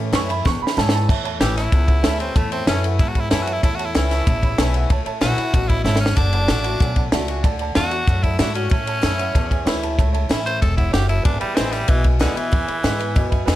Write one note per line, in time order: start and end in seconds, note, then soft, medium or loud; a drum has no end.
0.00 0.12 A2 medium
0.00 0.42 A2 medium
0.00 0.27 E3 medium
0.00 0.28 A3 medium
0.00 0.28 C#4 medium
0.13 0.44 F#2 loud
0.13 0.28 E3 loud
0.13 0.29 A3 medium
0.13 0.29 C#4 medium
0.13 0.28 E4 loud
0.13 0.30 C#6 loud
0.13 snare loud
0.13 ride medium
0.29 0.45 C#4 medium
0.29 0.44 E4 medium
0.29 0.45 B5 medium
0.29 ride medium
0.45 1.05 E2 loud
0.45 0.60 E2 loud
0.45 0.61 C#6 medium
0.45 kick loud
0.45 snare medium
0.61 0.77 B5 loud
0.61 muted upright bass stroke soft
0.67 snare medium
0.77 1.08 G#2 loud
0.77 1.07 E3 loud
0.77 1.08 C#4 medium
0.77 1.08 E4 loud
0.77 0.93 A5 loud
0.77 snare medium
0.89 snare loud
0.95 1.09 A5 medium
1.08 1.40 E2 medium
1.08 1.70 A2 medium
1.08 1.18 C#5 medium
1.08 1.18 E5 medium
1.08 1.19 A5 loud
1.08 kick loud
1.08 crash loud
1.24 1.34 C#5 loud
1.24 1.34 E5 loud
1.24 1.35 A5 loud
1.24 ride medium
1.39 1.71 A1 loud
1.39 1.56 E3 medium
1.39 1.56 A3 loud
1.39 1.57 C#4 medium
1.39 1.56 E4 medium
1.39 1.56 G4 loud
1.39 1.49 C#5 medium
1.39 snare loud
1.39 ride medium
1.56 1.73 C#4 medium
1.56 2.18 E4 medium
1.56 1.72 E4 medium
1.56 1.66 C#5 medium
1.56 1.66 E5 medium
1.56 1.66 A5 medium
1.56 snare soft
1.56 ride medium
1.70 2.02 C#2 medium
1.70 2.33 E2 medium
1.70 1.81 C#5 medium
1.70 1.81 E5 medium
1.70 1.82 A5 medium
1.70 kick loud
1.70 ride medium
1.87 1.97 C#5 medium
1.87 1.97 E5 medium
1.87 1.98 F#5 medium
1.87 kick medium
1.87 ride medium
2.02 2.34 D2 medium
2.02 2.19 E3 medium
2.02 2.19 A3 medium
2.02 2.20 C#4 medium
2.02 2.18 E4 loud
2.02 2.13 C#5 loud
2.02 2.13 E5 loud
2.02 2.14 A5 loud
2.02 snare loud
2.02 ride medium
2.19 2.37 C4 medium
2.19 2.36 C#4 medium
2.19 2.35 E4 medium
2.19 2.29 C#5 medium
2.19 2.29 E5 medium
2.19 ride medium
2.34 2.66 E2 medium
2.34 2.96 A2 medium
2.34 2.51 A3 medium
2.34 2.44 C#5 loud
2.34 2.45 E5 medium
2.34 2.45 A5 loud
2.34 kick loud
2.34 ride medium
2.51 2.67 C4 medium
2.51 2.61 C#5 loud
2.51 2.61 E5 medium
2.51 2.62 A5 loud
2.51 ride medium
2.67 2.98 F#2 medium
2.67 2.98 E3 medium
2.67 2.98 A3 medium
2.67 2.83 C#4 loud
2.67 2.98 C#4 medium
2.67 2.98 E4 medium
2.67 2.77 C#5 medium
2.67 2.77 E5 medium
2.67 2.78 A5 medium
2.67 snare loud
2.67 ride medium
2.84 2.93 C#5 medium
2.84 2.94 E5 medium
2.84 2.94 F#5 medium
2.84 ride medium
2.99 3.60 E2 loud
2.99 3.30 G#2 medium
2.99 3.10 E4 loud
2.99 3.09 C#5 medium
2.99 3.09 E5 medium
2.99 3.10 A5 medium
2.99 kick loud
2.99 ride medium
3.08 3.21 F#4 loud
3.15 3.24 C#5 medium
3.15 3.25 E5 medium
3.15 3.25 B5 medium
3.15 kick medium
3.15 ride medium
3.20 3.30 E4 medium
3.30 3.62 F#2 medium
3.30 3.46 E3 medium
3.30 3.46 A3 medium
3.30 3.47 C#4 loud
3.30 3.44 E4 medium
3.30 3.46 E4 medium
3.30 3.40 C#5 loud
3.30 3.40 E5 medium
3.30 3.41 A5 loud
3.30 snare loud
3.30 ride medium
3.43 3.54 F#4 medium
3.43 3.56 C#5 medium
3.47 3.63 C#4 soft
3.47 3.62 E4 medium
3.47 3.56 E5 medium
3.47 3.57 A5 medium
3.47 ride medium
3.53 3.63 E4 medium
3.62 3.94 E2 medium
3.62 4.24 A2 medium
3.62 3.77 E4 medium
3.62 3.72 C#5 loud
3.62 3.73 E5 medium
3.62 3.73 A5 loud
3.62 kick loud
3.62 ride medium
3.75 3.87 F#4 medium
3.75 3.87 C#5 loud
3.75 3.88 E5 medium
3.75 3.88 A5 loud
3.79 ride medium
3.85 3.95 E4 medium
3.94 4.26 C#2 medium
3.94 4.25 E3 medium
3.94 4.25 A3 medium
3.94 4.25 C#4 loud
3.94 4.88 E4 loud
3.94 4.26 E4 loud
3.94 4.04 C#5 medium
3.94 4.05 B5 medium
3.94 snare loud
3.94 ride medium
4.10 4.20 C#5 medium
4.10 4.20 E5 medium
4.10 4.21 A5 medium
4.10 snare soft
4.10 ride medium
4.26 4.57 A1 loud
4.26 4.87 E2 loud
4.26 4.36 C#5 medium
4.26 4.36 E5 medium
4.26 4.37 A5 medium
4.26 kick loud
4.26 ride medium
4.43 4.52 C#5 medium
4.43 4.53 E5 medium
4.43 4.53 B5 loud
4.43 kick medium
4.43 ride medium
4.58 4.89 B1 medium
4.58 4.88 E3 medium
4.58 4.89 A3 medium
4.58 4.89 C#4 medium
4.58 4.89 E4 loud
4.58 4.68 C#5 loud
4.58 4.68 E5 loud
4.58 4.69 A5 loud
4.58 snare loud
4.58 ride medium
4.74 4.83 C#5 medium
4.74 4.84 F#5 loud
4.74 ride medium
4.89 5.05 C#2 medium
4.89 5.50 A2 medium
4.89 4.99 C#5 loud
4.89 5.00 E5 loud
4.89 5.00 A5 loud
4.89 kick loud
4.89 ride medium
5.05 5.15 C#5 loud
5.05 5.15 E5 loud
5.05 5.16 A5 loud
5.05 muted upright bass stroke soft
5.05 ride medium
5.21 5.36 A#1 medium
5.21 5.36 E3 medium
5.21 5.37 A3 medium
5.21 5.37 C#4 medium
5.21 5.37 E4 loud
5.21 5.70 F#4 loud
5.21 5.31 C#5 medium
5.21 5.32 A5 medium
5.21 snare loud
5.21 ride medium
5.37 5.54 C#4 medium
5.37 5.53 E4 medium
5.37 5.47 C#5 medium
5.37 5.47 E5 medium
5.37 5.48 G#5 medium
5.37 muted upright bass stroke soft
5.37 ride medium
5.53 5.84 A1 loud
5.53 5.84 B2 medium
5.53 5.63 C#5 medium
5.53 5.63 E5 medium
5.53 5.63 A5 medium
5.53 kick loud
5.53 ride medium
5.68 5.83 E4 loud
5.68 5.78 C#5 medium
5.68 5.79 E5 medium
5.68 5.79 B5 medium
5.68 kick medium
5.68 ride medium
5.84 6.16 G#1 loud
5.84 6.16 C#3 medium
5.84 6.00 E4 loud
5.84 5.95 C#5 loud
5.84 5.95 E5 loud
5.84 5.95 A5 loud
5.84 snare medium
5.96 snare medium
6.00 6.17 C#4 loud
6.00 6.11 E5 medium
6.00 6.11 A5 medium
6.06 snare loud
6.15 6.48 F#1 medium
6.15 6.48 D3 medium
6.15 7.09 D4 loud
6.15 6.25 D5 loud
6.15 6.26 F#5 medium
6.15 6.27 A5 loud
6.15 kick loud
6.15 ride medium
6.33 6.42 D5 loud
6.33 6.43 F#5 medium
6.33 6.43 A5 loud
6.33 ride medium
6.47 6.80 A1 medium
6.47 6.64 D3 medium
6.47 6.65 A3 medium
6.47 6.65 D4 medium
6.47 6.57 D5 medium
6.47 6.58 F#5 medium
6.47 6.58 A5 medium
6.47 snare loud
6.47 ride medium
6.52 6.64 F#4 loud
6.63 6.80 F#4 medium
6.63 6.73 D5 medium
6.63 6.73 F#5 medium
6.63 6.74 A5 loud
6.63 ride medium
6.68 6.81 D4 medium
6.79 7.11 B1 medium
6.79 7.42 A2 medium
6.79 6.89 D5 medium
6.79 6.90 F#5 medium
6.79 6.90 G#5 loud
6.79 kick loud
6.79 ride medium
6.96 7.06 D5 medium
6.96 7.06 F#5 medium
6.96 7.07 A5 loud
6.96 kick medium
6.96 ride medium
7.12 7.43 C#2 medium
7.12 7.28 D3 medium
7.12 7.28 A3 medium
7.12 7.28 D4 medium
7.12 7.27 F#4 medium
7.12 7.22 D5 loud
7.12 7.22 F#5 loud
7.12 7.22 A5 loud
7.12 snare loud
7.12 ride medium
7.28 7.44 D4 soft
7.28 7.43 F#4 medium
7.28 7.37 D5 medium
7.28 7.38 F#5 medium
7.28 7.38 G#5 loud
7.28 ride medium
7.43 7.75 D2 medium
7.43 7.74 D3 medium
7.43 7.53 D5 loud
7.43 7.53 F#5 loud
7.43 7.54 A5 loud
7.43 kick loud
7.43 ride medium
7.59 7.69 D5 loud
7.59 7.70 F#5 loud
7.59 7.70 A5 loud
7.59 ride medium
7.75 8.07 E2 loud
7.75 7.91 D3 medium
7.75 7.91 A3 medium
7.75 7.91 D4 loud
7.75 8.24 F#4 loud
7.75 7.90 F#4 medium
7.75 7.85 D5 medium
7.75 7.86 A5 medium
7.75 snare loud
7.75 ride medium
7.90 8.08 D4 medium
7.90 8.07 F#4 medium
7.90 8.00 D5 medium
7.90 8.01 F#5 medium
7.90 8.01 A5 medium
7.90 ride medium
8.07 8.38 F#2 loud
8.07 8.68 A2 loud
8.07 8.17 D5 medium
8.07 8.17 F#5 medium
8.07 8.18 A5 medium
8.07 kick loud
8.07 ride medium
8.23 8.39 E4 loud
8.23 8.33 D5 medium
8.23 8.33 F#5 medium
8.23 8.33 A5 medium
8.23 kick medium
8.23 ride medium
8.38 8.70 G#2 loud
8.38 8.54 D3 medium
8.38 8.54 A3 medium
8.38 8.55 D4 loud
8.38 8.54 E4 loud
8.38 8.53 F#4 loud
8.38 8.48 D5 loud
8.38 8.49 F#5 medium
8.38 8.49 B5 loud
8.38 snare loud
8.38 ride loud
8.54 8.70 C#4 medium
8.54 8.71 D4 soft
8.54 8.70 F#4 medium
8.54 8.64 D5 medium
8.54 8.65 F#5 medium
8.54 8.65 A5 medium
8.54 ride medium
8.70 9.31 A2 medium
8.70 9.02 A2 medium
8.70 9.63 C#4 loud
8.70 8.80 C#5 loud
8.70 8.81 E5 medium
8.70 8.81 A5 loud
8.70 kick loud
8.70 ride medium
8.86 8.96 C#5 medium
8.86 8.96 E5 medium
8.86 8.97 A5 loud
8.86 ride medium
9.02 9.34 F#2 medium
9.02 9.17 E3 medium
9.02 9.18 A3 medium
9.02 9.18 C#4 loud
9.02 9.17 E4 medium
9.02 9.12 C#5 medium
9.02 9.13 E5 medium
9.02 9.13 A5 medium
9.02 snare loud
9.02 ride medium
9.18 9.35 C#4 soft
9.18 9.34 E4 medium
9.18 9.28 C#5 medium
9.18 9.28 E5 medium
9.18 9.29 F#5 loud
9.18 ride medium
9.33 9.66 E2 medium
9.33 9.96 E2 medium
9.33 9.43 C#5 medium
9.33 9.44 E5 medium
9.33 9.44 A5 loud
9.33 kick loud
9.33 ride medium
9.50 9.60 C#5 medium
9.50 9.60 E5 medium
9.50 9.61 G#5 loud
9.50 kick medium
9.50 ride medium
9.65 9.97 D2 loud
9.65 9.82 E3 medium
9.65 9.82 A3 medium
9.65 9.83 C#4 loud
9.65 9.82 E4 loud
9.65 9.75 C#5 loud
9.65 9.76 E5 loud
9.65 9.76 B5 loud
9.65 snare loud
9.65 ride medium
9.82 9.99 C#4 soft
9.82 9.98 E4 medium
9.82 9.91 C#5 medium
9.82 9.92 E5 medium
9.82 9.92 A5 loud
9.82 ride medium
9.97 10.29 C#2 medium
9.97 10.59 A2 medium
9.97 10.07 C#5 loud
9.97 10.08 E5 loud
9.97 10.08 A5 loud
9.97 kick loud
9.97 ride medium
10.13 10.23 C#5 loud
10.13 10.23 E5 loud
10.13 10.24 A5 loud
10.13 ride medium
10.29 10.61 A1 medium
10.29 10.45 E3 medium
10.29 10.45 A3 medium
10.29 10.46 C#4 loud
10.29 10.45 E4 loud
10.29 10.39 C#5 medium
10.29 10.39 E5 medium
10.29 10.40 B5 loud
10.29 snare loud
10.29 ride medium
10.44 10.62 C#4 soft
10.44 10.61 E4 medium
10.44 10.61 C5 loud
10.44 10.55 C#5 medium
10.44 10.56 G#5 medium
10.44 ride medium
10.60 10.93 E1 loud
10.60 10.92 G#2 medium
10.60 10.76 A4 loud
10.60 10.70 C#5 medium
10.60 10.71 E5 medium
10.60 10.71 A5 medium
10.60 kick loud
10.60 ride medium
10.76 10.92 E4 loud
10.76 10.87 C#5 medium
10.76 10.87 E5 medium
10.76 10.87 F#5 medium
10.76 kick medium
10.76 ride medium
10.91 11.24 F#1 medium
10.91 11.24 F#2 medium
10.91 11.08 G4 loud
10.91 11.02 C#5 loud
10.91 11.02 E5 loud
10.91 11.03 F#5 loud
10.91 snare loud
10.91 ride medium
11.07 11.24 E4 loud
11.07 11.18 C#5 medium
11.07 11.18 E5 medium
11.07 11.19 A5 medium
11.07 ride medium
11.23 11.40 G#1 medium
11.23 11.86 E2 medium
11.23 11.40 D4 loud
11.23 11.34 B4 medium
11.23 11.34 E5 medium
11.23 11.35 G#5 loud
11.23 kick loud
11.23 ride medium
11.39 11.57 G3 loud
11.39 11.50 B4 loud
11.39 11.50 E5 medium
11.39 11.51 B5 loud
11.39 muted upright bass stroke soft
11.39 ride medium
11.55 11.88 A1 medium
11.55 11.72 E3 medium
11.55 11.73 G#3 medium
11.55 11.73 B3 medium
11.55 11.74 C4 loud
11.55 11.72 E4 medium
11.55 11.66 B4 medium
11.55 11.66 G#5 medium
11.55 snare loud
11.55 ride medium
11.71 11.90 G3 loud
11.71 11.89 E4 medium
11.71 11.82 B4 medium
11.71 11.82 E5 medium
11.71 11.82 B5 medium
11.71 snare soft
11.71 ride medium
11.75 11.90 B3 medium
11.87 12.20 B1 loud
11.87 12.49 B2 medium
11.87 12.04 E3 loud
11.87 11.98 B4 medium
11.87 11.98 E5 medium
11.87 11.98 G#5 medium
11.87 kick loud
11.87 ride medium
12.03 12.14 B4 medium
12.03 12.14 E5 medium
12.03 12.14 G#5 medium
12.03 kick medium
12.03 ride medium
12.19 12.36 D2 loud
12.19 12.39 D3 loud
12.19 12.35 E3 medium
12.19 12.36 G#3 medium
12.19 12.36 B3 medium
12.19 12.34 E4 loud
12.19 12.30 B4 loud
12.19 12.30 E5 medium
12.19 12.31 G#5 loud
12.19 snare loud
12.19 ride medium
12.35 13.29 E3 loud
12.35 12.52 B3 medium
12.35 12.51 E4 medium
12.35 12.46 B4 medium
12.35 12.46 E5 medium
12.35 12.47 G#5 medium
12.35 muted upright bass stroke soft
12.35 ride medium
12.52 13.13 E2 medium
12.52 12.67 E2 medium
12.52 12.62 B4 medium
12.52 12.62 E5 medium
12.52 12.63 G#5 loud
12.52 kick loud
12.52 ride medium
12.68 12.78 B4 loud
12.68 12.78 E5 medium
12.68 12.79 G#5 loud
12.68 muted upright bass stroke soft
12.68 ride medium
12.84 13.15 G#2 medium
12.84 12.99 E3 medium
12.84 13.00 G#3 medium
12.84 13.00 B3 medium
12.84 12.98 E4 loud
12.84 12.94 B4 medium
12.84 12.94 E5 medium
12.84 12.95 F#5 loud
12.84 snare loud
12.84 ride medium
12.99 13.16 B3 medium
12.99 13.15 E4 medium
12.99 13.09 B4 medium
12.99 13.09 E5 medium
12.99 13.10 G#5 loud
12.99 ride medium
13.15 13.47 F#2 loud
13.15 13.56 B2 medium
13.15 13.25 B4 medium
13.15 13.25 E5 medium
13.15 13.26 G#5 loud
13.15 kick loud
13.15 ride medium
13.30 13.40 B4 loud
13.30 13.41 E5 medium
13.30 13.41 G#5 loud
13.30 kick medium
13.30 ride medium
13.46 13.56 E2 loud
13.46 13.56 E3 medium
13.46 13.56 G#3 medium
13.46 13.56 B3 loud
13.46 13.56 E4 loud
13.46 13.56 B4 loud
13.46 13.56 E5 loud
13.46 13.56 G#5 loud
13.46 snare loud
13.46 ride medium